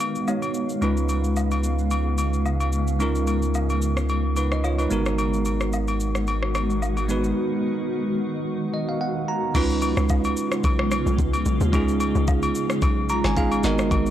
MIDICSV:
0, 0, Header, 1, 6, 480
1, 0, Start_track
1, 0, Tempo, 545455
1, 722, Time_signature, 4, 2, 24, 8
1, 12412, End_track
2, 0, Start_track
2, 0, Title_t, "Tine electric piano"
2, 0, Program_c, 0, 4
2, 0, Control_c, 0, 64, 127
2, 0, Note_on_c, 0, 56, 73
2, 0, Note_on_c, 0, 59, 69
2, 0, Note_on_c, 0, 63, 70
2, 0, Note_on_c, 0, 66, 69
2, 0, Note_on_c, 0, 71, 82
2, 205, Note_off_c, 0, 56, 0
2, 208, Note_off_c, 0, 59, 0
2, 211, Note_off_c, 0, 63, 0
2, 214, Note_off_c, 0, 66, 0
2, 217, Note_off_c, 0, 71, 0
2, 243, Note_on_c, 0, 56, 57
2, 245, Note_on_c, 0, 59, 49
2, 248, Note_on_c, 0, 63, 51
2, 251, Note_on_c, 0, 66, 50
2, 254, Note_on_c, 0, 73, 63
2, 705, Note_off_c, 0, 56, 0
2, 715, Note_on_c, 0, 56, 71
2, 716, Note_off_c, 0, 63, 0
2, 721, Note_on_c, 0, 61, 63
2, 724, Note_off_c, 0, 59, 0
2, 726, Note_on_c, 0, 63, 65
2, 727, Note_off_c, 0, 66, 0
2, 728, Note_off_c, 0, 73, 0
2, 733, Control_c, 0, 64, 0
2, 733, Note_on_c, 0, 65, 67
2, 738, Note_on_c, 0, 71, 80
2, 867, Control_c, 0, 64, 127
2, 2604, Note_off_c, 0, 56, 0
2, 2607, Note_off_c, 0, 61, 0
2, 2609, Note_off_c, 0, 63, 0
2, 2612, Note_off_c, 0, 65, 0
2, 2615, Note_off_c, 0, 71, 0
2, 2636, Note_on_c, 0, 56, 71
2, 2642, Note_on_c, 0, 61, 64
2, 2647, Note_on_c, 0, 63, 64
2, 2653, Note_on_c, 0, 65, 68
2, 2659, Note_on_c, 0, 70, 83
2, 3821, Note_off_c, 0, 63, 0
2, 3824, Note_off_c, 0, 65, 0
2, 3827, Note_off_c, 0, 70, 0
2, 3847, Note_on_c, 0, 71, 64
2, 3852, Note_on_c, 0, 63, 52
2, 3970, Note_off_c, 0, 71, 0
2, 3973, Note_off_c, 0, 63, 0
2, 3981, Note_on_c, 0, 75, 68
2, 4080, Note_off_c, 0, 75, 0
2, 4088, Note_on_c, 0, 73, 68
2, 4092, Note_on_c, 0, 65, 57
2, 4211, Note_off_c, 0, 73, 0
2, 4213, Note_off_c, 0, 65, 0
2, 4217, Note_on_c, 0, 71, 62
2, 4223, Note_on_c, 0, 63, 55
2, 4286, Note_off_c, 0, 56, 0
2, 4289, Note_off_c, 0, 61, 0
2, 4314, Note_off_c, 0, 63, 0
2, 4314, Note_on_c, 0, 56, 75
2, 4319, Note_on_c, 0, 59, 69
2, 4325, Note_on_c, 0, 63, 70
2, 4330, Note_on_c, 0, 66, 69
2, 4334, Control_c, 0, 64, 0
2, 4336, Note_on_c, 0, 70, 80
2, 4444, Note_off_c, 0, 71, 0
2, 4511, Control_c, 0, 64, 127
2, 6203, Note_off_c, 0, 56, 0
2, 6206, Note_off_c, 0, 59, 0
2, 6208, Note_off_c, 0, 63, 0
2, 6211, Note_off_c, 0, 66, 0
2, 6214, Note_off_c, 0, 70, 0
2, 6235, Note_on_c, 0, 56, 77
2, 6240, Note_on_c, 0, 59, 69
2, 6245, Note_on_c, 0, 63, 68
2, 6252, Note_on_c, 0, 66, 69
2, 6257, Note_on_c, 0, 71, 87
2, 7688, Note_on_c, 0, 75, 70
2, 7808, Note_off_c, 0, 75, 0
2, 7820, Note_on_c, 0, 77, 66
2, 7918, Note_off_c, 0, 77, 0
2, 7928, Note_on_c, 0, 78, 73
2, 8123, Note_off_c, 0, 56, 0
2, 8126, Note_off_c, 0, 59, 0
2, 8129, Note_off_c, 0, 63, 0
2, 8132, Note_off_c, 0, 66, 0
2, 8135, Note_off_c, 0, 71, 0
2, 8149, Note_off_c, 0, 78, 0
2, 8169, Note_on_c, 0, 82, 75
2, 8389, Note_off_c, 0, 82, 0
2, 8397, Note_on_c, 0, 56, 77
2, 8403, Note_on_c, 0, 61, 70
2, 8409, Note_on_c, 0, 63, 76
2, 8413, Control_c, 0, 64, 0
2, 8414, Note_on_c, 0, 65, 75
2, 8420, Note_on_c, 0, 71, 82
2, 8586, Control_c, 0, 64, 127
2, 10285, Note_off_c, 0, 56, 0
2, 10288, Note_off_c, 0, 61, 0
2, 10290, Note_off_c, 0, 63, 0
2, 10293, Note_off_c, 0, 65, 0
2, 10296, Note_off_c, 0, 71, 0
2, 10317, Note_on_c, 0, 56, 78
2, 10323, Note_on_c, 0, 61, 70
2, 10329, Note_on_c, 0, 63, 70
2, 10335, Note_on_c, 0, 65, 71
2, 10340, Note_on_c, 0, 68, 87
2, 11528, Note_on_c, 0, 82, 75
2, 11648, Note_off_c, 0, 82, 0
2, 11661, Note_on_c, 0, 80, 70
2, 11731, Note_off_c, 0, 56, 0
2, 11734, Note_off_c, 0, 61, 0
2, 11737, Note_off_c, 0, 63, 0
2, 11740, Note_off_c, 0, 65, 0
2, 11743, Note_off_c, 0, 68, 0
2, 11758, Note_off_c, 0, 80, 0
2, 11762, Note_on_c, 0, 56, 60
2, 11765, Note_on_c, 0, 61, 57
2, 11767, Note_on_c, 0, 77, 81
2, 11768, Note_on_c, 0, 63, 56
2, 11771, Note_on_c, 0, 65, 57
2, 11774, Note_on_c, 0, 68, 69
2, 11986, Note_off_c, 0, 56, 0
2, 11988, Note_off_c, 0, 77, 0
2, 11997, Note_on_c, 0, 56, 81
2, 11998, Note_off_c, 0, 63, 0
2, 12002, Note_on_c, 0, 59, 75
2, 12004, Note_off_c, 0, 61, 0
2, 12007, Note_off_c, 0, 65, 0
2, 12008, Note_off_c, 0, 68, 0
2, 12009, Note_on_c, 0, 63, 75
2, 12009, Note_on_c, 0, 75, 82
2, 12013, Control_c, 0, 64, 0
2, 12014, Note_on_c, 0, 66, 76
2, 12020, Note_on_c, 0, 70, 89
2, 12184, Control_c, 0, 64, 127
2, 12229, Note_off_c, 0, 75, 0
2, 12412, Note_off_c, 0, 56, 0
2, 12412, Note_off_c, 0, 59, 0
2, 12412, Note_off_c, 0, 63, 0
2, 12412, Note_off_c, 0, 66, 0
2, 12412, Note_off_c, 0, 70, 0
2, 12412, End_track
3, 0, Start_track
3, 0, Title_t, "Ambient pad"
3, 0, Program_c, 1, 92
3, 0, Note_on_c, 1, 51, 81
3, 0, Note_on_c, 1, 56, 73
3, 0, Note_on_c, 1, 59, 70
3, 0, Note_on_c, 1, 77, 88
3, 687, Note_off_c, 1, 51, 0
3, 722, Note_on_c, 1, 49, 82
3, 4285, Note_off_c, 1, 77, 0
3, 4286, Note_off_c, 1, 56, 0
3, 4287, Note_off_c, 1, 49, 0
3, 4287, Note_off_c, 1, 59, 0
3, 4322, Note_on_c, 1, 56, 73
3, 4323, Note_on_c, 1, 59, 72
3, 4324, Note_on_c, 1, 51, 76
3, 4324, Note_on_c, 1, 66, 88
3, 8367, Note_off_c, 1, 56, 0
3, 8367, Note_off_c, 1, 59, 0
3, 8368, Note_off_c, 1, 51, 0
3, 8368, Note_off_c, 1, 66, 0
3, 8404, Note_on_c, 1, 65, 89
3, 8405, Note_on_c, 1, 49, 86
3, 8405, Note_on_c, 1, 56, 78
3, 8405, Note_on_c, 1, 59, 78
3, 11968, Note_off_c, 1, 49, 0
3, 11968, Note_off_c, 1, 65, 0
3, 12002, Note_on_c, 1, 51, 82
3, 12002, Note_on_c, 1, 66, 94
3, 12412, Note_off_c, 1, 51, 0
3, 12412, Note_off_c, 1, 56, 0
3, 12412, Note_off_c, 1, 59, 0
3, 12412, Note_off_c, 1, 66, 0
3, 12412, End_track
4, 0, Start_track
4, 0, Title_t, "Log drum bass"
4, 0, Program_c, 2, 39
4, 8403, Note_on_c, 2, 37, 111
4, 8757, Note_off_c, 2, 37, 0
4, 8775, Note_on_c, 2, 37, 106
4, 9106, Note_off_c, 2, 37, 0
4, 9364, Note_on_c, 2, 35, 104
4, 9717, Note_off_c, 2, 35, 0
4, 9735, Note_on_c, 2, 35, 83
4, 9838, Note_off_c, 2, 35, 0
4, 9843, Note_on_c, 2, 37, 96
4, 10071, Note_off_c, 2, 37, 0
4, 10084, Note_on_c, 2, 35, 97
4, 10209, Note_off_c, 2, 35, 0
4, 10215, Note_on_c, 2, 39, 101
4, 10317, Note_off_c, 2, 39, 0
4, 10324, Note_on_c, 2, 37, 113
4, 10677, Note_off_c, 2, 37, 0
4, 10695, Note_on_c, 2, 37, 110
4, 11026, Note_off_c, 2, 37, 0
4, 11283, Note_on_c, 2, 35, 104
4, 11637, Note_off_c, 2, 35, 0
4, 11654, Note_on_c, 2, 32, 93
4, 11986, Note_off_c, 2, 32, 0
4, 12003, Note_on_c, 2, 32, 107
4, 12231, Note_off_c, 2, 32, 0
4, 12242, Note_on_c, 2, 32, 109
4, 12412, Note_off_c, 2, 32, 0
4, 12412, End_track
5, 0, Start_track
5, 0, Title_t, "Sub bass"
5, 0, Program_c, 3, 38
5, 721, Note_on_c, 3, 37, 82
5, 4286, Note_off_c, 3, 37, 0
5, 4323, Note_on_c, 3, 32, 82
5, 6447, Note_off_c, 3, 32, 0
5, 12412, End_track
6, 0, Start_track
6, 0, Title_t, "Drums"
6, 0, Note_on_c, 9, 82, 94
6, 2, Note_on_c, 9, 67, 77
6, 87, Note_off_c, 9, 82, 0
6, 90, Note_off_c, 9, 67, 0
6, 135, Note_on_c, 9, 82, 48
6, 223, Note_off_c, 9, 82, 0
6, 243, Note_on_c, 9, 77, 69
6, 243, Note_on_c, 9, 82, 63
6, 331, Note_off_c, 9, 77, 0
6, 331, Note_off_c, 9, 82, 0
6, 372, Note_on_c, 9, 67, 67
6, 372, Note_on_c, 9, 82, 44
6, 460, Note_off_c, 9, 67, 0
6, 460, Note_off_c, 9, 82, 0
6, 477, Note_on_c, 9, 82, 86
6, 565, Note_off_c, 9, 82, 0
6, 609, Note_on_c, 9, 82, 52
6, 697, Note_off_c, 9, 82, 0
6, 721, Note_on_c, 9, 67, 74
6, 721, Note_on_c, 9, 82, 70
6, 809, Note_off_c, 9, 67, 0
6, 809, Note_off_c, 9, 82, 0
6, 854, Note_on_c, 9, 82, 53
6, 942, Note_off_c, 9, 82, 0
6, 958, Note_on_c, 9, 82, 87
6, 961, Note_on_c, 9, 67, 60
6, 1046, Note_off_c, 9, 82, 0
6, 1049, Note_off_c, 9, 67, 0
6, 1092, Note_on_c, 9, 82, 55
6, 1180, Note_off_c, 9, 82, 0
6, 1199, Note_on_c, 9, 82, 79
6, 1203, Note_on_c, 9, 77, 65
6, 1287, Note_off_c, 9, 82, 0
6, 1291, Note_off_c, 9, 77, 0
6, 1330, Note_on_c, 9, 82, 47
6, 1335, Note_on_c, 9, 67, 67
6, 1418, Note_off_c, 9, 82, 0
6, 1423, Note_off_c, 9, 67, 0
6, 1441, Note_on_c, 9, 82, 87
6, 1529, Note_off_c, 9, 82, 0
6, 1573, Note_on_c, 9, 82, 54
6, 1661, Note_off_c, 9, 82, 0
6, 1678, Note_on_c, 9, 82, 74
6, 1683, Note_on_c, 9, 67, 77
6, 1766, Note_off_c, 9, 82, 0
6, 1771, Note_off_c, 9, 67, 0
6, 1920, Note_on_c, 9, 82, 95
6, 1921, Note_on_c, 9, 67, 71
6, 2008, Note_off_c, 9, 82, 0
6, 2009, Note_off_c, 9, 67, 0
6, 2056, Note_on_c, 9, 82, 50
6, 2144, Note_off_c, 9, 82, 0
6, 2163, Note_on_c, 9, 77, 69
6, 2164, Note_on_c, 9, 82, 64
6, 2251, Note_off_c, 9, 77, 0
6, 2252, Note_off_c, 9, 82, 0
6, 2293, Note_on_c, 9, 67, 69
6, 2294, Note_on_c, 9, 82, 45
6, 2381, Note_off_c, 9, 67, 0
6, 2382, Note_off_c, 9, 82, 0
6, 2399, Note_on_c, 9, 82, 92
6, 2487, Note_off_c, 9, 82, 0
6, 2530, Note_on_c, 9, 82, 55
6, 2618, Note_off_c, 9, 82, 0
6, 2642, Note_on_c, 9, 82, 75
6, 2643, Note_on_c, 9, 67, 74
6, 2730, Note_off_c, 9, 82, 0
6, 2731, Note_off_c, 9, 67, 0
6, 2775, Note_on_c, 9, 82, 51
6, 2863, Note_off_c, 9, 82, 0
6, 2878, Note_on_c, 9, 82, 87
6, 2882, Note_on_c, 9, 67, 63
6, 2966, Note_off_c, 9, 82, 0
6, 2970, Note_off_c, 9, 67, 0
6, 3012, Note_on_c, 9, 82, 55
6, 3100, Note_off_c, 9, 82, 0
6, 3119, Note_on_c, 9, 82, 84
6, 3124, Note_on_c, 9, 77, 68
6, 3207, Note_off_c, 9, 82, 0
6, 3212, Note_off_c, 9, 77, 0
6, 3252, Note_on_c, 9, 82, 46
6, 3256, Note_on_c, 9, 67, 67
6, 3340, Note_off_c, 9, 82, 0
6, 3344, Note_off_c, 9, 67, 0
6, 3361, Note_on_c, 9, 82, 87
6, 3449, Note_off_c, 9, 82, 0
6, 3492, Note_on_c, 9, 37, 86
6, 3494, Note_on_c, 9, 82, 55
6, 3580, Note_off_c, 9, 37, 0
6, 3582, Note_off_c, 9, 82, 0
6, 3598, Note_on_c, 9, 82, 73
6, 3604, Note_on_c, 9, 67, 76
6, 3686, Note_off_c, 9, 82, 0
6, 3692, Note_off_c, 9, 67, 0
6, 3840, Note_on_c, 9, 82, 94
6, 3841, Note_on_c, 9, 67, 74
6, 3928, Note_off_c, 9, 82, 0
6, 3929, Note_off_c, 9, 67, 0
6, 3975, Note_on_c, 9, 37, 81
6, 3977, Note_on_c, 9, 82, 49
6, 4063, Note_off_c, 9, 37, 0
6, 4065, Note_off_c, 9, 82, 0
6, 4082, Note_on_c, 9, 77, 72
6, 4084, Note_on_c, 9, 82, 66
6, 4170, Note_off_c, 9, 77, 0
6, 4172, Note_off_c, 9, 82, 0
6, 4210, Note_on_c, 9, 67, 67
6, 4213, Note_on_c, 9, 82, 46
6, 4298, Note_off_c, 9, 67, 0
6, 4301, Note_off_c, 9, 82, 0
6, 4318, Note_on_c, 9, 82, 90
6, 4406, Note_off_c, 9, 82, 0
6, 4449, Note_on_c, 9, 82, 55
6, 4455, Note_on_c, 9, 37, 92
6, 4537, Note_off_c, 9, 82, 0
6, 4543, Note_off_c, 9, 37, 0
6, 4562, Note_on_c, 9, 67, 76
6, 4562, Note_on_c, 9, 82, 75
6, 4650, Note_off_c, 9, 67, 0
6, 4650, Note_off_c, 9, 82, 0
6, 4694, Note_on_c, 9, 82, 51
6, 4782, Note_off_c, 9, 82, 0
6, 4797, Note_on_c, 9, 82, 91
6, 4803, Note_on_c, 9, 67, 61
6, 4885, Note_off_c, 9, 82, 0
6, 4891, Note_off_c, 9, 67, 0
6, 4932, Note_on_c, 9, 82, 52
6, 4933, Note_on_c, 9, 37, 87
6, 5020, Note_off_c, 9, 82, 0
6, 5021, Note_off_c, 9, 37, 0
6, 5039, Note_on_c, 9, 82, 85
6, 5045, Note_on_c, 9, 77, 67
6, 5127, Note_off_c, 9, 82, 0
6, 5133, Note_off_c, 9, 77, 0
6, 5171, Note_on_c, 9, 82, 48
6, 5176, Note_on_c, 9, 67, 69
6, 5259, Note_off_c, 9, 82, 0
6, 5264, Note_off_c, 9, 67, 0
6, 5281, Note_on_c, 9, 82, 87
6, 5369, Note_off_c, 9, 82, 0
6, 5412, Note_on_c, 9, 37, 85
6, 5414, Note_on_c, 9, 82, 54
6, 5500, Note_off_c, 9, 37, 0
6, 5502, Note_off_c, 9, 82, 0
6, 5518, Note_on_c, 9, 82, 72
6, 5525, Note_on_c, 9, 67, 75
6, 5606, Note_off_c, 9, 82, 0
6, 5613, Note_off_c, 9, 67, 0
6, 5654, Note_on_c, 9, 37, 84
6, 5742, Note_off_c, 9, 37, 0
6, 5761, Note_on_c, 9, 82, 97
6, 5762, Note_on_c, 9, 67, 72
6, 5764, Note_on_c, 9, 37, 83
6, 5849, Note_off_c, 9, 82, 0
6, 5850, Note_off_c, 9, 67, 0
6, 5852, Note_off_c, 9, 37, 0
6, 5897, Note_on_c, 9, 82, 49
6, 5985, Note_off_c, 9, 82, 0
6, 6003, Note_on_c, 9, 77, 71
6, 6004, Note_on_c, 9, 82, 65
6, 6091, Note_off_c, 9, 77, 0
6, 6092, Note_off_c, 9, 82, 0
6, 6133, Note_on_c, 9, 67, 68
6, 6134, Note_on_c, 9, 82, 46
6, 6221, Note_off_c, 9, 67, 0
6, 6222, Note_off_c, 9, 82, 0
6, 6239, Note_on_c, 9, 82, 94
6, 6327, Note_off_c, 9, 82, 0
6, 6370, Note_on_c, 9, 82, 55
6, 6458, Note_off_c, 9, 82, 0
6, 8403, Note_on_c, 9, 36, 113
6, 8403, Note_on_c, 9, 49, 102
6, 8403, Note_on_c, 9, 67, 81
6, 8404, Note_on_c, 9, 82, 79
6, 8491, Note_off_c, 9, 36, 0
6, 8491, Note_off_c, 9, 49, 0
6, 8491, Note_off_c, 9, 67, 0
6, 8492, Note_off_c, 9, 82, 0
6, 8536, Note_on_c, 9, 82, 58
6, 8624, Note_off_c, 9, 82, 0
6, 8640, Note_on_c, 9, 82, 102
6, 8642, Note_on_c, 9, 67, 71
6, 8728, Note_off_c, 9, 82, 0
6, 8730, Note_off_c, 9, 67, 0
6, 8774, Note_on_c, 9, 82, 59
6, 8775, Note_on_c, 9, 37, 95
6, 8862, Note_off_c, 9, 82, 0
6, 8863, Note_off_c, 9, 37, 0
6, 8880, Note_on_c, 9, 82, 88
6, 8885, Note_on_c, 9, 36, 101
6, 8887, Note_on_c, 9, 77, 73
6, 8968, Note_off_c, 9, 82, 0
6, 8973, Note_off_c, 9, 36, 0
6, 8975, Note_off_c, 9, 77, 0
6, 9012, Note_on_c, 9, 82, 56
6, 9019, Note_on_c, 9, 67, 73
6, 9100, Note_off_c, 9, 82, 0
6, 9107, Note_off_c, 9, 67, 0
6, 9122, Note_on_c, 9, 82, 100
6, 9210, Note_off_c, 9, 82, 0
6, 9253, Note_on_c, 9, 37, 95
6, 9255, Note_on_c, 9, 82, 63
6, 9341, Note_off_c, 9, 37, 0
6, 9343, Note_off_c, 9, 82, 0
6, 9359, Note_on_c, 9, 82, 80
6, 9364, Note_on_c, 9, 36, 127
6, 9369, Note_on_c, 9, 67, 79
6, 9447, Note_off_c, 9, 82, 0
6, 9452, Note_off_c, 9, 36, 0
6, 9457, Note_off_c, 9, 67, 0
6, 9496, Note_on_c, 9, 37, 96
6, 9584, Note_off_c, 9, 37, 0
6, 9603, Note_on_c, 9, 82, 105
6, 9604, Note_on_c, 9, 67, 78
6, 9605, Note_on_c, 9, 37, 91
6, 9691, Note_off_c, 9, 82, 0
6, 9692, Note_off_c, 9, 67, 0
6, 9693, Note_off_c, 9, 37, 0
6, 9738, Note_on_c, 9, 82, 53
6, 9826, Note_off_c, 9, 82, 0
6, 9843, Note_on_c, 9, 36, 97
6, 9846, Note_on_c, 9, 82, 68
6, 9931, Note_off_c, 9, 36, 0
6, 9934, Note_off_c, 9, 82, 0
6, 9974, Note_on_c, 9, 67, 78
6, 9976, Note_on_c, 9, 82, 52
6, 10062, Note_off_c, 9, 67, 0
6, 10064, Note_off_c, 9, 82, 0
6, 10081, Note_on_c, 9, 82, 98
6, 10169, Note_off_c, 9, 82, 0
6, 10213, Note_on_c, 9, 82, 60
6, 10301, Note_off_c, 9, 82, 0
6, 10323, Note_on_c, 9, 36, 110
6, 10324, Note_on_c, 9, 67, 82
6, 10324, Note_on_c, 9, 82, 79
6, 10411, Note_off_c, 9, 36, 0
6, 10412, Note_off_c, 9, 67, 0
6, 10412, Note_off_c, 9, 82, 0
6, 10457, Note_on_c, 9, 82, 57
6, 10545, Note_off_c, 9, 82, 0
6, 10562, Note_on_c, 9, 67, 72
6, 10562, Note_on_c, 9, 82, 100
6, 10650, Note_off_c, 9, 67, 0
6, 10650, Note_off_c, 9, 82, 0
6, 10695, Note_on_c, 9, 82, 61
6, 10783, Note_off_c, 9, 82, 0
6, 10801, Note_on_c, 9, 82, 91
6, 10805, Note_on_c, 9, 36, 106
6, 10805, Note_on_c, 9, 77, 72
6, 10889, Note_off_c, 9, 82, 0
6, 10893, Note_off_c, 9, 36, 0
6, 10893, Note_off_c, 9, 77, 0
6, 10934, Note_on_c, 9, 82, 53
6, 10937, Note_on_c, 9, 67, 77
6, 11022, Note_off_c, 9, 82, 0
6, 11025, Note_off_c, 9, 67, 0
6, 11043, Note_on_c, 9, 82, 94
6, 11131, Note_off_c, 9, 82, 0
6, 11173, Note_on_c, 9, 37, 95
6, 11175, Note_on_c, 9, 82, 61
6, 11261, Note_off_c, 9, 37, 0
6, 11263, Note_off_c, 9, 82, 0
6, 11279, Note_on_c, 9, 82, 79
6, 11283, Note_on_c, 9, 36, 127
6, 11286, Note_on_c, 9, 67, 83
6, 11367, Note_off_c, 9, 82, 0
6, 11371, Note_off_c, 9, 36, 0
6, 11374, Note_off_c, 9, 67, 0
6, 11520, Note_on_c, 9, 82, 103
6, 11524, Note_on_c, 9, 67, 82
6, 11608, Note_off_c, 9, 82, 0
6, 11612, Note_off_c, 9, 67, 0
6, 11654, Note_on_c, 9, 37, 88
6, 11654, Note_on_c, 9, 38, 66
6, 11656, Note_on_c, 9, 82, 53
6, 11742, Note_off_c, 9, 37, 0
6, 11742, Note_off_c, 9, 38, 0
6, 11744, Note_off_c, 9, 82, 0
6, 11762, Note_on_c, 9, 36, 97
6, 11764, Note_on_c, 9, 82, 72
6, 11850, Note_off_c, 9, 36, 0
6, 11852, Note_off_c, 9, 82, 0
6, 11894, Note_on_c, 9, 67, 76
6, 11894, Note_on_c, 9, 82, 48
6, 11982, Note_off_c, 9, 67, 0
6, 11982, Note_off_c, 9, 82, 0
6, 11999, Note_on_c, 9, 82, 99
6, 12004, Note_on_c, 9, 38, 68
6, 12087, Note_off_c, 9, 82, 0
6, 12092, Note_off_c, 9, 38, 0
6, 12130, Note_on_c, 9, 82, 60
6, 12135, Note_on_c, 9, 37, 97
6, 12218, Note_off_c, 9, 82, 0
6, 12223, Note_off_c, 9, 37, 0
6, 12242, Note_on_c, 9, 36, 116
6, 12243, Note_on_c, 9, 67, 78
6, 12243, Note_on_c, 9, 82, 82
6, 12330, Note_off_c, 9, 36, 0
6, 12331, Note_off_c, 9, 67, 0
6, 12331, Note_off_c, 9, 82, 0
6, 12375, Note_on_c, 9, 82, 57
6, 12412, Note_off_c, 9, 82, 0
6, 12412, End_track
0, 0, End_of_file